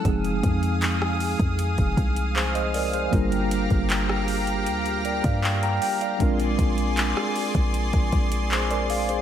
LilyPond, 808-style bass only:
\new Staff \with { instrumentName = "808-style bass" } { \clef bass \time 4/4 \key f \dorian \tempo 4 = 78 f,,8 f,4~ f,16 f,8 f,,16 c,4. | g,,8. g,,4~ g,,16 d,8. g,8. r8 | bes,,8 bes,,8. r8 bes,,8 bes,,16 bes,,4. | }